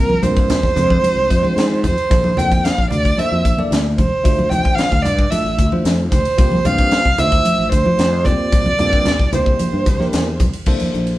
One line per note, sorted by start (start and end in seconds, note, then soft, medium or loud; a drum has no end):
0.00 0.17 C2 loud
0.00 0.12 G3 medium
0.00 0.12 A#3 medium
0.00 0.12 C4 medium
0.00 0.12 F4 medium
0.00 0.12 A#4 medium
0.00 0.24 A#4 loud
0.10 high conga medium
0.22 0.54 G2 medium
0.22 0.63 G3 medium
0.22 0.63 A#3 medium
0.22 0.63 C4 medium
0.22 0.63 F4 medium
0.22 0.63 A#4 medium
0.22 1.83 C5 loud
0.22 hi-hat pedal medium
0.22 ride medium
0.22 high conga medium
0.22 low conga medium
0.37 kick medium
0.37 ride medium
0.50 snare loud
0.50 hi-hat pedal medium
0.50 ride medium
0.50 low conga medium
0.63 0.74 E2 medium
0.63 kick medium
0.63 snare soft
0.76 0.97 F2 loud
0.76 1.30 G#3 medium
0.76 1.30 C4 medium
0.76 1.30 D4 medium
0.76 1.30 F4 medium
0.76 1.30 C5 medium
0.76 hi-hat pedal medium
0.76 ride medium
0.76 low conga medium
0.90 kick medium
0.90 high conga medium
1.04 hi-hat pedal medium
1.04 ride medium
1.04 high conga medium
1.16 1.27 C2 medium
1.30 1.41 F2 medium
1.30 kick medium
1.30 hi-hat pedal medium
1.30 ride medium
1.42 1.73 G#3 medium
1.42 1.73 C4 medium
1.42 1.73 D4 medium
1.42 1.74 F4 medium
1.42 1.74 C5 medium
1.42 high conga medium
1.56 1.85 G#2 medium
1.56 snare loud
1.56 hi-hat pedal medium
1.56 ride medium
1.72 snare soft
1.84 1.94 F2 medium
1.84 2.39 C5 medium
1.84 kick medium
1.84 snare soft
1.84 hi-hat pedal medium
1.84 ride medium
1.84 low conga medium
1.98 ride medium
2.10 2.32 A#1 loud
2.10 2.30 A#3 medium
2.10 2.30 D4 medium
2.10 2.31 E4 medium
2.10 2.31 A4 medium
2.10 2.31 C5 medium
2.10 kick loud
2.10 hi-hat pedal medium
2.10 ride medium
2.24 high conga medium
2.37 2.69 F2 medium
2.37 2.77 A#3 medium
2.37 2.78 D4 medium
2.37 2.78 E4 medium
2.37 2.78 A4 medium
2.37 2.78 C5 medium
2.37 2.66 G5 medium
2.37 hi-hat pedal medium
2.37 ride medium
2.37 high conga medium
2.37 low conga medium
2.52 kick medium
2.52 ride medium
2.64 2.90 F5 medium
2.64 snare loud
2.64 hi-hat pedal medium
2.64 ride medium
2.78 2.88 A#1 medium
2.78 kick medium
2.90 3.12 D2 medium
2.90 2.97 A4 soft
2.90 2.98 C5 soft
2.90 3.20 D5 medium
2.90 hi-hat pedal medium
2.90 ride medium
2.90 low conga medium
3.05 kick medium
3.05 ride medium
3.18 3.48 A#3 medium
3.18 3.48 D4 medium
3.18 3.48 E4 medium
3.18 3.48 A4 medium
3.18 3.48 C5 medium
3.18 3.45 E5 medium
3.18 hi-hat pedal medium
3.18 ride medium
3.18 high conga medium
3.32 3.42 F2 medium
3.45 3.55 A#1 medium
3.45 kick medium
3.45 hi-hat pedal medium
3.45 ride medium
3.58 3.88 A#3 medium
3.58 3.88 D4 medium
3.58 3.88 E4 medium
3.58 3.88 A4 medium
3.58 3.89 D5 medium
3.58 high conga medium
3.71 4.00 D2 medium
3.71 snare loud
3.71 hi-hat pedal medium
3.71 ride medium
3.98 4.09 A#1 medium
3.98 4.04 A4 soft
3.98 4.51 C5 medium
3.98 4.05 C5 soft
3.98 kick medium
3.98 hi-hat pedal medium
3.98 ride medium
3.98 low conga medium
4.24 4.46 D2 medium
4.24 4.44 A3 medium
4.24 4.44 D4 medium
4.24 4.44 E4 medium
4.24 4.45 F4 medium
4.24 4.45 C5 medium
4.24 kick medium
4.24 hi-hat pedal medium
4.24 ride medium
4.39 high conga medium
4.49 4.83 A1 medium
4.49 4.91 A3 medium
4.49 4.91 D4 medium
4.49 4.91 E4 medium
4.49 4.91 F4 medium
4.49 4.91 C5 medium
4.49 4.76 G5 medium
4.49 hi-hat pedal medium
4.49 ride medium
4.49 high conga medium
4.49 low conga medium
4.65 kick medium
4.65 ride medium
4.75 5.03 F5 loud
4.75 hi-hat pedal medium
4.75 ride medium
4.79 snare loud
4.91 5.02 D2 medium
4.91 kick medium
4.91 snare soft
5.02 5.26 G2 loud
5.02 5.11 F4 soft
5.02 5.32 D5 medium
5.02 hi-hat pedal medium
5.02 ride medium
5.02 low conga medium
5.06 5.12 D5 soft
5.06 snare soft
5.19 kick medium
5.30 5.61 A3 medium
5.30 5.61 D4 medium
5.30 5.62 E4 medium
5.30 5.62 F4 medium
5.30 5.62 A4 medium
5.30 5.57 E5 medium
5.30 hi-hat pedal medium
5.30 ride medium
5.30 high conga medium
5.44 5.55 A1 medium
5.58 5.69 D2 medium
5.58 kick medium
5.58 hi-hat pedal medium
5.58 ride medium
5.72 6.02 A3 medium
5.72 6.02 D4 medium
5.72 6.02 E4 medium
5.72 6.02 F4 medium
5.72 6.02 C5 medium
5.72 high conga medium
5.84 6.11 F2 medium
5.84 snare loud
5.84 hi-hat pedal medium
5.84 ride medium
6.11 6.22 D2 medium
6.11 6.18 F4 soft
6.11 6.18 G4 soft
6.11 6.67 C5 medium
6.11 kick medium
6.11 snare soft
6.11 hi-hat pedal medium
6.11 ride medium
6.11 low conga medium
6.25 ride medium
6.37 6.59 C2 loud
6.37 6.58 A#3 medium
6.37 6.58 C4 medium
6.37 6.58 F4 medium
6.37 6.58 G4 medium
6.37 6.59 C5 loud
6.37 kick loud
6.37 hi-hat pedal medium
6.37 ride medium
6.52 high conga medium
6.65 6.97 G2 medium
6.65 7.05 A#3 medium
6.65 7.05 C4 medium
6.65 7.06 F4 medium
6.65 7.06 G4 medium
6.65 7.06 C5 medium
6.65 7.20 F5 loud
6.65 hi-hat pedal medium
6.65 ride medium
6.65 high conga medium
6.65 low conga medium
6.78 kick medium
6.78 ride medium
6.91 snare loud
6.91 hi-hat pedal medium
6.91 ride medium
7.05 7.16 C2 medium
7.05 kick medium
7.18 7.39 D2 medium
7.18 7.72 A3 medium
7.18 7.72 D4 medium
7.18 7.72 E4 medium
7.18 7.72 F4 medium
7.18 7.72 C5 medium
7.18 7.71 E5 loud
7.18 snare soft
7.18 hi-hat pedal medium
7.18 ride medium
7.18 low conga medium
7.32 kick medium
7.32 ride medium
7.45 hi-hat pedal medium
7.45 ride medium
7.45 high conga medium
7.58 7.69 A1 medium
7.72 7.83 D2 loud
7.72 8.26 C5 loud
7.72 kick medium
7.72 hi-hat pedal medium
7.72 ride medium
7.85 8.15 A3 medium
7.85 8.15 D4 medium
7.85 8.16 E4 medium
7.85 8.16 F4 medium
7.85 8.16 C5 medium
7.85 high conga medium
7.98 8.27 F2 medium
7.98 snare loud
7.98 hi-hat pedal medium
7.98 ride medium
8.24 8.36 C2 medium
8.24 8.68 A#3 medium
8.24 8.68 C4 medium
8.24 8.69 F4 medium
8.24 8.69 G4 medium
8.24 8.69 C5 medium
8.24 9.32 D5 loud
8.24 kick medium
8.24 hi-hat pedal medium
8.24 ride medium
8.24 low conga medium
8.52 8.73 C2 medium
8.52 kick loud
8.52 hi-hat pedal medium
8.52 ride medium
8.66 high conga medium
8.79 9.11 G2 medium
8.79 9.19 A#3 medium
8.79 9.19 C4 medium
8.79 9.19 F4 medium
8.79 9.19 G4 medium
8.79 9.19 A4 medium
8.79 hi-hat pedal medium
8.79 ride medium
8.79 low conga medium
8.93 kick medium
8.93 ride medium
9.05 snare loud
9.05 hi-hat pedal medium
9.05 ride medium
9.05 low conga medium
9.19 9.30 C2 medium
9.19 kick medium
9.19 snare soft
9.32 9.53 C2 medium
9.32 9.86 A#3 medium
9.32 9.86 D4 medium
9.32 9.86 E4 medium
9.32 9.86 G4 medium
9.32 9.86 C5 medium
9.32 10.36 C5 medium
9.32 hi-hat pedal medium
9.32 ride medium
9.32 low conga medium
9.46 kick medium
9.59 hi-hat pedal medium
9.59 ride medium
9.59 high conga medium
9.73 9.83 G2 medium
9.86 9.96 C2 loud
9.86 kick medium
9.86 hi-hat pedal medium
9.86 ride medium
9.99 10.29 A#3 medium
9.99 10.29 D4 medium
9.99 10.30 E4 medium
9.99 10.30 G4 medium
9.99 10.30 A#4 medium
9.99 snare soft
9.99 high conga medium
10.13 10.41 E2 medium
10.13 snare loud
10.13 hi-hat pedal medium
10.13 ride medium
10.39 10.50 C2 medium
10.39 10.46 G4 soft
10.39 10.46 C5 soft
10.39 kick medium
10.39 hi-hat pedal medium
10.39 ride medium
10.39 low conga medium
10.53 ride medium
10.66 10.77 C2 medium
10.66 11.16 A#3 medium
10.66 11.17 D4 medium
10.66 11.17 E4 medium
10.66 11.17 A4 medium
10.66 11.17 C5 loud
10.66 kick medium
10.66 crash medium
10.80 ride medium
10.80 high conga medium
10.93 11.15 A#1 medium
10.93 hi-hat pedal medium
11.07 ride medium